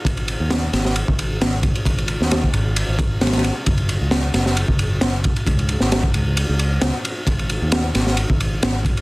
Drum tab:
RD |x-x-x---x---x---x---x---x---x-x-|x-x-x---x---x---x---x---xxxxx---|x-x-x---x---x---x---x---x---x-x-|x-x-x---x---x---x---x---x---x---|
SD |--------o---o-o---------o-------|------o-o---------------oooo----|--------o---o-o---------o-------|------o-o---------------o-------|
BD |o-----------------o---------o---|o---------o---------o-----------|o-----------------o---------o---|o---------o---------------------|

RD |x-x-x---x---x---x---x---x---x-x-|
SD |--------o---o-o---------o-------|
BD |o-----------------o---------o---|